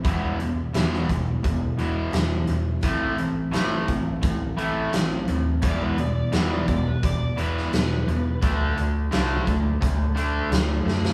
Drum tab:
HH |x-x-x-x-x-x-x-x-|x-x-x-x-x-x-x-x-|x-x-x-x-x-x-x-x-|x-x-x-x-x-x-x---|
SD |----oo------o---|----o-------o---|----o------oo---|----o-------o-oo|
BD |o-----o-o-------|o-----o-o-------|o-----o-o-------|o-----o-o-------|